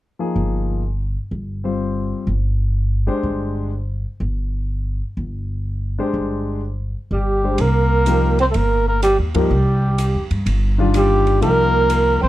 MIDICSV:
0, 0, Header, 1, 6, 480
1, 0, Start_track
1, 0, Key_signature, -3, "minor"
1, 0, Tempo, 481541
1, 1798, Time_signature, 4, 2, 24, 8
1, 12245, End_track
2, 0, Start_track
2, 0, Title_t, "Muted trumpet"
2, 0, Program_c, 0, 59
2, 7112, Note_on_c, 0, 67, 75
2, 7585, Note_on_c, 0, 70, 94
2, 7600, Note_off_c, 0, 67, 0
2, 8375, Note_off_c, 0, 70, 0
2, 8387, Note_on_c, 0, 72, 96
2, 8432, Note_off_c, 0, 72, 0
2, 8482, Note_on_c, 0, 69, 62
2, 8530, Note_on_c, 0, 70, 104
2, 8545, Note_off_c, 0, 69, 0
2, 8844, Note_off_c, 0, 70, 0
2, 8853, Note_on_c, 0, 70, 83
2, 8995, Note_off_c, 0, 70, 0
2, 9006, Note_on_c, 0, 67, 81
2, 9150, Note_off_c, 0, 67, 0
2, 9333, Note_on_c, 0, 67, 70
2, 10247, Note_off_c, 0, 67, 0
2, 10933, Note_on_c, 0, 67, 83
2, 11372, Note_off_c, 0, 67, 0
2, 11390, Note_on_c, 0, 70, 102
2, 12156, Note_off_c, 0, 70, 0
2, 12191, Note_on_c, 0, 72, 89
2, 12245, Note_off_c, 0, 72, 0
2, 12245, End_track
3, 0, Start_track
3, 0, Title_t, "Grand piano"
3, 0, Program_c, 1, 0
3, 191, Note_on_c, 1, 53, 46
3, 197, Note_on_c, 1, 58, 40
3, 202, Note_on_c, 1, 63, 42
3, 202, Note_on_c, 1, 68, 51
3, 802, Note_off_c, 1, 53, 0
3, 805, Note_off_c, 1, 58, 0
3, 807, Note_off_c, 1, 63, 0
3, 807, Note_off_c, 1, 68, 0
3, 1634, Note_on_c, 1, 60, 39
3, 1640, Note_on_c, 1, 55, 43
3, 1645, Note_on_c, 1, 72, 47
3, 1647, Note_on_c, 1, 65, 39
3, 2243, Note_off_c, 1, 60, 0
3, 2246, Note_off_c, 1, 55, 0
3, 2249, Note_off_c, 1, 72, 0
3, 2250, Note_off_c, 1, 65, 0
3, 3057, Note_on_c, 1, 56, 56
3, 3061, Note_on_c, 1, 67, 53
3, 3062, Note_on_c, 1, 62, 50
3, 3073, Note_on_c, 1, 72, 63
3, 3675, Note_off_c, 1, 56, 0
3, 3677, Note_off_c, 1, 67, 0
3, 3678, Note_off_c, 1, 62, 0
3, 3683, Note_off_c, 1, 72, 0
3, 5966, Note_on_c, 1, 62, 47
3, 5972, Note_on_c, 1, 56, 55
3, 5978, Note_on_c, 1, 72, 58
3, 5979, Note_on_c, 1, 67, 49
3, 6571, Note_off_c, 1, 62, 0
3, 6573, Note_off_c, 1, 56, 0
3, 6576, Note_off_c, 1, 72, 0
3, 6577, Note_off_c, 1, 67, 0
3, 7413, Note_on_c, 1, 62, 41
3, 7419, Note_on_c, 1, 56, 44
3, 7423, Note_on_c, 1, 67, 43
3, 7424, Note_on_c, 1, 72, 53
3, 7565, Note_off_c, 1, 62, 0
3, 7568, Note_off_c, 1, 56, 0
3, 7570, Note_off_c, 1, 67, 0
3, 7571, Note_off_c, 1, 72, 0
3, 8043, Note_on_c, 1, 53, 50
3, 8045, Note_on_c, 1, 63, 50
3, 8046, Note_on_c, 1, 58, 50
3, 8056, Note_on_c, 1, 67, 54
3, 8332, Note_off_c, 1, 53, 0
3, 8332, Note_off_c, 1, 63, 0
3, 8333, Note_off_c, 1, 58, 0
3, 8338, Note_off_c, 1, 67, 0
3, 9314, Note_on_c, 1, 53, 61
3, 9322, Note_on_c, 1, 58, 58
3, 9324, Note_on_c, 1, 63, 57
3, 9326, Note_on_c, 1, 70, 66
3, 9459, Note_off_c, 1, 53, 0
3, 9463, Note_off_c, 1, 58, 0
3, 9464, Note_off_c, 1, 63, 0
3, 9465, Note_off_c, 1, 70, 0
3, 10747, Note_on_c, 1, 51, 65
3, 10756, Note_on_c, 1, 62, 60
3, 10761, Note_on_c, 1, 55, 54
3, 10766, Note_on_c, 1, 65, 74
3, 11359, Note_off_c, 1, 51, 0
3, 11364, Note_off_c, 1, 62, 0
3, 11366, Note_off_c, 1, 55, 0
3, 11368, Note_off_c, 1, 65, 0
3, 11376, Note_on_c, 1, 53, 53
3, 11378, Note_on_c, 1, 58, 53
3, 11383, Note_on_c, 1, 63, 55
3, 11389, Note_on_c, 1, 67, 60
3, 12124, Note_off_c, 1, 53, 0
3, 12125, Note_off_c, 1, 58, 0
3, 12127, Note_off_c, 1, 63, 0
3, 12130, Note_off_c, 1, 67, 0
3, 12245, End_track
4, 0, Start_track
4, 0, Title_t, "Alto saxophone"
4, 0, Program_c, 2, 65
4, 7103, Note_on_c, 2, 55, 65
4, 7581, Note_on_c, 2, 58, 78
4, 7596, Note_off_c, 2, 55, 0
4, 8368, Note_off_c, 2, 58, 0
4, 8374, Note_on_c, 2, 60, 78
4, 8421, Note_off_c, 2, 60, 0
4, 8482, Note_on_c, 2, 57, 55
4, 8530, Note_on_c, 2, 58, 79
4, 8545, Note_off_c, 2, 57, 0
4, 8842, Note_off_c, 2, 58, 0
4, 8848, Note_on_c, 2, 58, 61
4, 8993, Note_off_c, 2, 58, 0
4, 9002, Note_on_c, 2, 55, 68
4, 9146, Note_off_c, 2, 55, 0
4, 9335, Note_on_c, 2, 55, 69
4, 10247, Note_off_c, 2, 55, 0
4, 10920, Note_on_c, 2, 55, 68
4, 11365, Note_off_c, 2, 55, 0
4, 11393, Note_on_c, 2, 58, 81
4, 12157, Note_off_c, 2, 58, 0
4, 12170, Note_on_c, 2, 60, 76
4, 12245, Note_off_c, 2, 60, 0
4, 12245, End_track
5, 0, Start_track
5, 0, Title_t, "Upright bass"
5, 0, Program_c, 3, 32
5, 355, Note_on_c, 3, 31, 71
5, 1151, Note_off_c, 3, 31, 0
5, 1309, Note_on_c, 3, 31, 66
5, 2108, Note_off_c, 3, 31, 0
5, 2261, Note_on_c, 3, 31, 74
5, 3064, Note_off_c, 3, 31, 0
5, 3223, Note_on_c, 3, 31, 65
5, 4025, Note_off_c, 3, 31, 0
5, 4188, Note_on_c, 3, 31, 72
5, 4988, Note_off_c, 3, 31, 0
5, 5153, Note_on_c, 3, 31, 72
5, 5951, Note_off_c, 3, 31, 0
5, 6116, Note_on_c, 3, 31, 66
5, 6913, Note_off_c, 3, 31, 0
5, 7085, Note_on_c, 3, 31, 72
5, 7529, Note_off_c, 3, 31, 0
5, 7563, Note_on_c, 3, 36, 78
5, 8481, Note_off_c, 3, 36, 0
5, 8524, Note_on_c, 3, 31, 79
5, 9122, Note_off_c, 3, 31, 0
5, 9155, Note_on_c, 3, 39, 55
5, 9305, Note_off_c, 3, 39, 0
5, 9321, Note_on_c, 3, 43, 59
5, 9468, Note_off_c, 3, 43, 0
5, 9476, Note_on_c, 3, 36, 84
5, 10077, Note_off_c, 3, 36, 0
5, 10114, Note_on_c, 3, 41, 56
5, 10264, Note_off_c, 3, 41, 0
5, 10275, Note_on_c, 3, 43, 70
5, 10419, Note_off_c, 3, 43, 0
5, 10425, Note_on_c, 3, 31, 83
5, 11351, Note_off_c, 3, 31, 0
5, 11384, Note_on_c, 3, 36, 82
5, 12153, Note_off_c, 3, 36, 0
5, 12188, Note_on_c, 3, 34, 67
5, 12245, Note_off_c, 3, 34, 0
5, 12245, End_track
6, 0, Start_track
6, 0, Title_t, "Drums"
6, 7556, Note_on_c, 9, 51, 59
6, 7655, Note_off_c, 9, 51, 0
6, 8034, Note_on_c, 9, 44, 57
6, 8034, Note_on_c, 9, 51, 58
6, 8134, Note_off_c, 9, 44, 0
6, 8134, Note_off_c, 9, 51, 0
6, 8360, Note_on_c, 9, 51, 38
6, 8460, Note_off_c, 9, 51, 0
6, 8513, Note_on_c, 9, 51, 56
6, 8612, Note_off_c, 9, 51, 0
6, 8996, Note_on_c, 9, 44, 58
6, 8996, Note_on_c, 9, 51, 63
6, 9001, Note_on_c, 9, 37, 53
6, 9095, Note_off_c, 9, 44, 0
6, 9095, Note_off_c, 9, 51, 0
6, 9100, Note_off_c, 9, 37, 0
6, 9315, Note_on_c, 9, 51, 63
6, 9322, Note_on_c, 9, 36, 77
6, 9415, Note_off_c, 9, 51, 0
6, 9422, Note_off_c, 9, 36, 0
6, 9951, Note_on_c, 9, 44, 61
6, 9951, Note_on_c, 9, 51, 63
6, 10050, Note_off_c, 9, 44, 0
6, 10050, Note_off_c, 9, 51, 0
6, 10274, Note_on_c, 9, 51, 42
6, 10374, Note_off_c, 9, 51, 0
6, 10431, Note_on_c, 9, 51, 58
6, 10530, Note_off_c, 9, 51, 0
6, 10905, Note_on_c, 9, 44, 49
6, 10905, Note_on_c, 9, 51, 66
6, 10910, Note_on_c, 9, 37, 58
6, 11004, Note_off_c, 9, 44, 0
6, 11004, Note_off_c, 9, 51, 0
6, 11009, Note_off_c, 9, 37, 0
6, 11230, Note_on_c, 9, 51, 39
6, 11330, Note_off_c, 9, 51, 0
6, 11386, Note_on_c, 9, 51, 51
6, 11486, Note_off_c, 9, 51, 0
6, 11859, Note_on_c, 9, 44, 53
6, 11859, Note_on_c, 9, 51, 65
6, 11958, Note_off_c, 9, 44, 0
6, 11958, Note_off_c, 9, 51, 0
6, 12245, End_track
0, 0, End_of_file